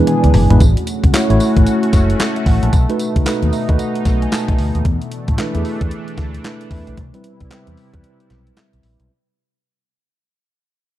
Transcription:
Already playing: analog synth pad B2 E3 D4 G#4, tine electric piano G#3 B3 D4 E4
0.00 tine electric piano B4
0.07 tine electric piano G#5, closed hi-hat, high tom
0.24 fingered electric bass D2, closed hi-hat, mid tom
0.34 fingered electric bass G1, mid tom, open hi-hat
0.50 fingered electric bass G#1, tine electric piano G#3 B3 D4 E4 B4, closed hi-hat, floor tom
0.60 fingered electric bass A1, analog synth pad A3 C#4 F#4, kick, closed hi-hat, tambourine
0.77 closed hi-hat
0.87 closed hi-hat, tambourine
1.04 fingered electric bass C#2, kick, closed hi-hat
1.13 tine electric piano A3 E4 F#4 C#5, snare, clap, closed hi-hat, tambourine
1.30 fingered electric bass A1, tine electric piano A3 E4 F#4 C#5, closed hi-hat
1.40 open hi-hat, tambourine
1.57 fingered electric bass A1, kick, closed hi-hat
1.67 closed hi-hat, tambourine
1.83 closed hi-hat
1.93 fingered electric bass F#1, kick, snare, closed hi-hat, tambourine
2.10 closed hi-hat
2.20 snare, clap, closed hi-hat, tambourine
2.36 tine electric piano E5, closed hi-hat
2.46 fingered electric bass A1, tine electric piano F#5, kick, open hi-hat
2.63 fingered electric bass A#1, tine electric piano A5, closed hi-hat
2.73 fingered electric bass B1, analog synth pad B2 D#4, kick, closed hi-hat, tambourine
2.89 tine electric piano A3 D#4 F#4 B4, closed hi-hat
3.00 closed hi-hat, tambourine
3.16 fingered electric bass C#2, kick, closed hi-hat
3.26 tine electric piano A3 D#4 F#4 B4, snare, clap, closed hi-hat, tambourine
3.42 fingered electric bass D#2, closed hi-hat
3.53 tine electric piano E5, open hi-hat, tambourine
3.69 fingered electric bass D#2, tine electric piano A3 D#4 F#4 B4 D#5, kick, closed hi-hat
3.79 tine electric piano F#5, closed hi-hat, tambourine
3.95 closed hi-hat
4.05 fingered electric bass B1, kick, snare, closed hi-hat, tambourine
4.22 tine electric piano G#5, closed hi-hat
4.32 tine electric piano A5, snare, clap, closed hi-hat, tambourine
4.48 fingered electric bass B1, kick, closed hi-hat
4.58 fingered electric bass D2, open hi-hat
4.75 fingered electric bass D#2, closed hi-hat
4.85 fingered electric bass E2, analog synth pad E3 A3 D4, kick, closed hi-hat
5.02 closed hi-hat
5.11 closed hi-hat
5.28 fingered electric bass A2, kick, closed hi-hat
5.38 tine electric piano A3 D4 E4 B4, snare, clap, closed hi-hat
5.54 fingered electric bass E2, tine electric piano A3 D4 E4 G#4, closed hi-hat
5.65 open hi-hat
5.81 fingered electric bass E2, kick, closed hi-hat
5.91 closed hi-hat
6.08 closed hi-hat
6.18 fingered electric bass D2, kick, snare, closed hi-hat
6.34 closed hi-hat
6.44 tine electric piano A3 D4 E4 B4, snare, clap, closed hi-hat
6.61 closed hi-hat
6.71 fingered electric bass E2, tine electric piano A3 D4 E4 B4, kick, open hi-hat
6.87 fingered electric bass B1, tine electric piano A3 D4 E4 B4, closed hi-hat
6.97 fingered electric bass C2, analog synth pad C3 G3 E4, kick, closed hi-hat
7.14 tine electric piano G3 C4 E4 B4, closed hi-hat
7.24 closed hi-hat
7.40 fingered electric bass C2, kick, closed hi-hat
7.50 tine electric piano G3 C4 E4 B4, snare, clap, closed hi-hat
7.67 fingered electric bass E2, closed hi-hat
7.77 open hi-hat
7.93 fingered electric bass E2, tine electric piano G3 C4 E4 B4, kick, closed hi-hat
8.04 closed hi-hat
8.20 closed hi-hat
8.30 fingered electric bass B1, snare, closed hi-hat
8.47 closed hi-hat
8.57 tine electric piano E5, snare, clap, closed hi-hat
8.73 fingered electric bass B1, closed hi-hat
8.83 fingered electric bass A#1, open hi-hat
9.00 fingered electric bass B1, closed hi-hat

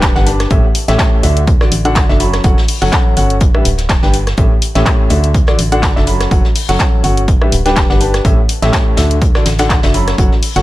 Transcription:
Already playing: fm bass D1
0.02 kick, snare, clap, closed hi-hat
0.16 fm bass G1, grand piano G3 D4 G4 B4 F#5, snare
0.26 grand piano D4 G4 B4 A5, closed hi-hat, open hi-hat
0.40 cross-stick, snare, closed hi-hat
0.50 fm bass A1, grand piano A2 C#4 G4 A4 E5, kick, closed hi-hat
0.75 closed hi-hat, open hi-hat
0.88 fm bass A1, grand piano A2 C#4 G4 A4 E5, snare, closed hi-hat
0.99 kick, snare, clap, closed hi-hat
1.23 fm bass D2, grand piano D3 D4 F#4 A4 E5, closed hi-hat, open hi-hat
1.37 closed hi-hat
1.47 kick, closed hi-hat
1.61 grand piano D3 D4 F#4 A4 D5, cross-stick, snare
1.72 fm bass A1, closed hi-hat, open hi-hat
1.85 grand piano D3 D4 F#4 A4 F#5, closed hi-hat
1.95 kick, snare, clap, closed hi-hat
2.09 fm bass F#1, grand piano D4 F#4 A4 E5, snare
2.20 grand piano F#3 C#4 F#4 A4 B5, closed hi-hat, open hi-hat
2.33 cross-stick, snare, closed hi-hat
2.44 fm bass F#1, grand piano F#3 C#4 F#4 A4 F#5, kick, closed hi-hat
2.58 snare
2.68 open hi-hat
2.81 fm bass F#1, grand piano F#3 C#4 F#4 A4 F#5, snare, closed hi-hat
2.92 kick, snare, clap, closed hi-hat
3.17 fm bass G1, grand piano C#4 F#4 A4 F#5, closed hi-hat, open hi-hat
3.30 closed hi-hat
3.40 kick, closed hi-hat
3.54 grand piano G3 D4 G4 B4 E5, cross-stick
3.65 fm bass D1, closed hi-hat, open hi-hat
3.78 snare, closed hi-hat
3.89 kick, snare, clap, closed hi-hat
4.03 fm bass G1, grand piano G3 D4 G4 B4 G5, snare
4.13 closed hi-hat, open hi-hat
4.27 cross-stick, snare, closed hi-hat
4.37 fm bass A1, grand piano A2 C#4 G4 A4 E5, kick, closed hi-hat
4.62 closed hi-hat, open hi-hat
4.75 fm bass A1, grand piano A2 C#4 G4 A4 E5, snare, closed hi-hat
4.86 kick, snare, clap, closed hi-hat
5.10 fm bass D2, grand piano D3 D4 F#4 A4 E5, closed hi-hat, open hi-hat
5.24 closed hi-hat
5.34 kick, closed hi-hat
5.47 grand piano D3 D4 F#4 A4 D5, cross-stick, snare
5.59 fm bass A1, closed hi-hat, open hi-hat
5.72 grand piano D3 D4 F#4 A4 F#5, closed hi-hat
5.83 kick, snare, clap, closed hi-hat
5.96 fm bass F#1, grand piano D4 F#4 A4 E5, snare
6.07 grand piano F#3 C#4 F#4 A4 B5, closed hi-hat, open hi-hat
6.21 cross-stick, snare, closed hi-hat
6.31 fm bass F#1, grand piano F#3 C#4 F#4 A4 F#5, kick, closed hi-hat
6.45 snare
6.55 open hi-hat
6.69 fm bass F#1, grand piano F#3 C#4 F#4 A4 F#5, snare, closed hi-hat
6.79 kick, snare, clap, closed hi-hat
7.04 fm bass G1, grand piano C#4 F#4 A4 F#5, closed hi-hat, open hi-hat
7.17 closed hi-hat
7.28 kick, closed hi-hat
7.41 grand piano G3 D4 G4 B4 E5, cross-stick
7.52 fm bass D1, closed hi-hat, open hi-hat
7.65 grand piano G3 D4 G4 B4 G5, snare, closed hi-hat
7.76 kick, snare, clap, closed hi-hat
7.90 fm bass G1, grand piano G3 D4 G4 B4 F#5, snare
8.01 grand piano D4 G4 B4 A5, closed hi-hat, open hi-hat
8.14 cross-stick, snare, closed hi-hat
8.25 fm bass A1, grand piano A2 C#4 G4 A4 E5, kick, closed hi-hat
8.49 closed hi-hat, open hi-hat
8.62 fm bass A1, grand piano A2 C#4 G4 A4 E5, snare, closed hi-hat
8.73 kick, snare, clap, closed hi-hat
8.97 fm bass D2, grand piano D3 D4 F#4 A4 E5, snare, closed hi-hat, open hi-hat
9.11 closed hi-hat
9.22 kick, closed hi-hat
9.35 grand piano D3 D4 F#4 A4 D5, cross-stick, snare
9.45 fm bass A1, snare, closed hi-hat, open hi-hat
9.58 grand piano D3 D4 F#4 A4 F#5, snare, closed hi-hat
9.70 kick, snare, clap, closed hi-hat
9.83 fm bass F#1, grand piano D4 F#4 A4 E5, snare, closed hi-hat
9.94 grand piano F#3 C#4 F#4 A4 B5, closed hi-hat, open hi-hat
10.08 cross-stick, snare, closed hi-hat
10.18 fm bass F#1, grand piano F#3 C#4 F#4 A4 F#5, kick, closed hi-hat
10.32 snare
10.43 open hi-hat
10.56 fm bass F#1, grand piano F#3 C#4 F#4 A4 F#5, snare, closed hi-hat

